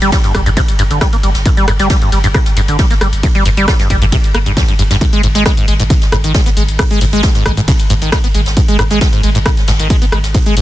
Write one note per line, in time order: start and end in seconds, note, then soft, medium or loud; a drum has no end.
0.02 0.12 G1 medium
0.02 0.10 G3 loud
0.02 closed hi-hat medium
0.12 0.19 G3 medium
0.12 kick loud
0.12 snare loud
0.12 closed hi-hat medium
0.12 ride medium
0.24 0.33 G2 medium
0.24 snare soft
0.24 closed hi-hat medium
0.35 0.46 G1 loud
0.35 0.41 G3 medium
0.35 kick medium
0.35 cross-stick medium
0.35 open hi-hat loud
0.35 ride medium
0.46 0.57 G1 medium
0.46 0.50 G2 loud
0.46 closed hi-hat medium
0.57 0.61 C3 loud
0.57 kick loud
0.57 closed hi-hat medium
0.57 ride medium
0.68 closed hi-hat medium
0.79 0.90 G1 loud
0.79 0.83 G2 loud
0.79 open hi-hat loud
0.79 ride medium
0.91 1.01 G1 medium
0.91 0.99 D3 medium
0.91 closed hi-hat medium
0.91 ride soft
1.01 1.08 G3 medium
1.01 kick loud
1.01 cross-stick medium
1.01 snare loud
1.01 closed hi-hat medium
1.01 ride medium
1.13 1.16 A#3 medium
1.13 closed hi-hat medium
1.23 1.34 G1 loud
1.23 1.30 G3 medium
1.23 open hi-hat loud
1.23 ride medium
1.34 1.45 G1 medium
1.34 snare medium
1.34 closed hi-hat medium
1.45 1.49 G2 loud
1.45 kick loud
1.45 closed hi-hat medium
1.45 ride medium
1.57 1.66 G3 loud
1.57 closed hi-hat medium
1.67 1.79 G1 loud
1.67 1.72 G2 loud
1.67 cross-stick medium
1.67 open hi-hat loud
1.67 ride medium
1.79 1.90 G1 medium
1.79 1.88 G3 loud
1.79 snare soft
1.79 closed hi-hat medium
1.89 1.97 G3 medium
1.89 kick loud
1.89 snare loud
1.89 closed hi-hat medium
1.89 ride loud
1.89 ride medium
2.02 2.10 G2 medium
2.02 closed hi-hat medium
2.12 2.23 G1 loud
2.12 2.19 G3 medium
2.12 open hi-hat loud
2.12 ride medium
2.24 2.34 G1 medium
2.24 2.27 G2 loud
2.24 closed hi-hat medium
2.24 ride soft
2.34 2.38 C3 loud
2.34 kick loud
2.34 cross-stick medium
2.34 closed hi-hat medium
2.34 ride medium
2.46 snare medium
2.46 closed hi-hat medium
2.57 2.68 G1 loud
2.57 2.61 G2 loud
2.57 open hi-hat loud
2.57 ride medium
2.68 2.79 G1 medium
2.68 2.77 D3 medium
2.68 closed hi-hat medium
2.78 2.85 G3 medium
2.78 kick loud
2.78 snare loud
2.78 closed hi-hat medium
2.78 ride loud
2.78 ride medium
2.91 2.94 A#3 medium
2.91 snare soft
2.91 closed hi-hat medium
3.01 3.12 G1 loud
3.01 3.08 G3 medium
3.01 cross-stick medium
3.01 open hi-hat loud
3.01 ride medium
3.13 3.23 G1 medium
3.13 closed hi-hat medium
3.23 3.27 G2 loud
3.23 kick loud
3.23 closed hi-hat medium
3.23 open hi-hat medium
3.23 ride medium
3.35 3.44 G3 loud
3.35 closed hi-hat medium
3.45 3.57 G1 loud
3.45 3.49 G2 loud
3.45 open hi-hat loud
3.45 ride medium
3.57 3.68 G1 medium
3.57 3.66 G3 loud
3.57 closed hi-hat medium
3.68 kick loud
3.68 cross-stick medium
3.68 snare loud
3.68 closed hi-hat medium
3.68 ride medium
3.79 3.88 G2 medium
3.79 snare soft
3.79 closed hi-hat medium
3.90 4.01 G1 loud
3.90 3.97 G3 medium
3.90 kick medium
3.90 open hi-hat loud
3.90 ride medium
4.02 4.12 G1 medium
4.02 4.05 G2 loud
4.02 closed hi-hat medium
4.12 4.16 C3 loud
4.12 kick loud
4.12 closed hi-hat medium
4.12 ride medium
4.24 closed hi-hat medium
4.34 4.46 G1 loud
4.34 4.38 A#3 medium
4.34 cross-stick medium
4.34 open hi-hat loud
4.34 ride medium
4.46 4.57 G1 medium
4.46 4.52 G2 medium
4.46 closed hi-hat soft
4.46 ride soft
4.57 4.63 F2 loud
4.57 kick loud
4.57 snare loud
4.57 closed hi-hat medium
4.57 ride medium
4.57 ride loud
4.68 4.74 G2 medium
4.68 closed hi-hat medium
4.79 4.90 G1 loud
4.79 4.83 G2 loud
4.79 open hi-hat loud
4.79 ride medium
4.91 5.01 G1 medium
4.91 4.96 G2 loud
4.91 snare medium
4.91 closed hi-hat medium
5.01 5.05 G#2 loud
5.01 kick loud
5.01 closed hi-hat medium
5.01 ride medium
5.13 5.22 G#3 loud
5.13 closed hi-hat medium
5.23 5.34 G#1 loud
5.23 5.27 G#2 loud
5.23 open hi-hat loud
5.23 ride medium
5.35 5.45 G#1 medium
5.35 5.44 G#3 loud
5.35 snare medium
5.35 closed hi-hat medium
5.45 kick loud
5.45 cross-stick medium
5.45 snare loud
5.45 closed hi-hat medium
5.45 ride medium
5.57 5.66 G#2 medium
5.57 closed hi-hat medium
5.67 5.79 G#1 loud
5.67 5.74 G#3 medium
5.67 open hi-hat loud
5.67 ride medium
5.79 5.90 G#1 medium
5.79 5.83 G#2 loud
5.79 closed hi-hat medium
5.79 ride soft
5.90 5.94 C#3 loud
5.90 kick loud
5.90 closed hi-hat medium
5.90 ride loud
5.90 ride medium
6.02 snare medium
6.02 closed hi-hat medium
6.12 6.23 G#1 loud
6.12 6.16 G#2 loud
6.12 cross-stick loud
6.12 open hi-hat loud
6.12 ride medium
6.24 6.34 G#1 medium
6.24 6.33 D#3 medium
6.24 closed hi-hat soft
6.34 6.41 G#3 medium
6.34 kick loud
6.34 snare loud
6.34 closed hi-hat medium
6.34 ride medium
6.46 6.50 B3 medium
6.46 snare soft
6.46 closed hi-hat medium
6.57 6.68 G#1 loud
6.57 6.63 G#3 medium
6.57 open hi-hat loud
6.57 ride medium
6.68 6.79 G#1 medium
6.68 closed hi-hat medium
6.79 6.83 G#2 loud
6.79 kick loud
6.79 cross-stick loud
6.79 closed hi-hat medium
6.79 open hi-hat medium
6.79 ride medium
6.91 6.99 G#3 loud
6.91 closed hi-hat medium
7.01 7.12 G#1 loud
7.01 7.05 G#2 loud
7.01 open hi-hat loud
7.01 ride medium
7.13 7.23 G#1 medium
7.13 7.22 G#3 loud
7.13 closed hi-hat soft
7.23 kick loud
7.23 snare loud
7.23 closed hi-hat medium
7.23 ride loud
7.23 ride medium
7.35 7.44 G#2 medium
7.35 snare soft
7.35 closed hi-hat medium
7.45 7.57 G#1 loud
7.45 7.52 G#3 medium
7.45 kick medium
7.45 cross-stick loud
7.45 open hi-hat loud
7.45 ride medium
7.57 7.68 G#1 medium
7.57 7.61 G#2 loud
7.57 closed hi-hat soft
7.68 7.72 C#3 loud
7.68 kick loud
7.68 closed hi-hat medium
7.68 ride medium
7.80 closed hi-hat medium
7.90 8.01 G#1 loud
7.90 7.94 G#2 loud
7.90 open hi-hat loud
7.90 ride medium
8.01 8.12 G#1 medium
8.01 8.10 D#3 medium
8.01 closed hi-hat soft
8.01 ride soft
8.12 8.19 G#3 medium
8.12 kick loud
8.12 cross-stick loud
8.12 snare loud
8.12 closed hi-hat medium
8.12 ride medium
8.12 ride loud
8.24 8.27 B3 medium
8.24 closed hi-hat medium
8.34 8.46 G#1 loud
8.34 8.41 G#3 medium
8.34 open hi-hat loud
8.34 ride medium
8.46 8.57 G#1 medium
8.46 snare medium
8.46 closed hi-hat medium
8.56 8.61 G#2 loud
8.56 kick loud
8.56 closed hi-hat medium
8.56 ride medium
8.68 8.77 G#3 loud
8.68 closed hi-hat medium
8.78 8.90 G#1 loud
8.78 8.83 G#2 loud
8.78 cross-stick loud
8.78 open hi-hat loud
8.78 ride medium
8.91 9.01 G#1 medium
8.91 8.99 G#3 loud
8.91 snare soft
8.91 closed hi-hat medium
9.01 kick loud
9.01 snare loud
9.01 closed hi-hat medium
9.01 ride medium
9.13 9.22 G#2 medium
9.13 closed hi-hat medium
9.23 9.35 G#1 loud
9.23 9.30 G#3 medium
9.23 open hi-hat loud
9.23 ride medium
9.35 9.45 G#1 medium
9.35 9.39 G#2 loud
9.35 closed hi-hat medium
9.35 ride soft
9.46 9.50 C#3 loud
9.46 kick loud
9.46 cross-stick loud
9.46 closed hi-hat medium
9.46 ride medium
9.57 snare medium
9.57 closed hi-hat medium
9.68 9.79 G#1 loud
9.68 9.72 G#2 loud
9.68 snare loud
9.68 open hi-hat loud
9.68 ride medium
9.80 9.90 G#1 medium
9.80 9.88 D#3 medium
9.80 closed hi-hat medium
9.90 9.96 G#3 medium
9.90 kick loud
9.90 closed hi-hat medium
9.90 ride medium
10.02 10.05 B3 medium
10.02 closed hi-hat medium
10.02 ride soft
10.12 10.23 G#1 loud
10.12 10.19 G#3 medium
10.12 cross-stick loud
10.12 open hi-hat loud
10.12 ride medium
10.23 10.34 G#1 medium
10.23 snare soft
10.23 closed hi-hat medium
10.34 10.38 G#2 loud
10.34 kick loud
10.34 closed hi-hat medium
10.34 open hi-hat medium
10.34 ride medium
10.46 10.55 G#3 loud
10.46 closed hi-hat medium
10.56 10.62 G#1 loud
10.56 10.61 G#2 loud
10.56 open hi-hat loud
10.56 ride medium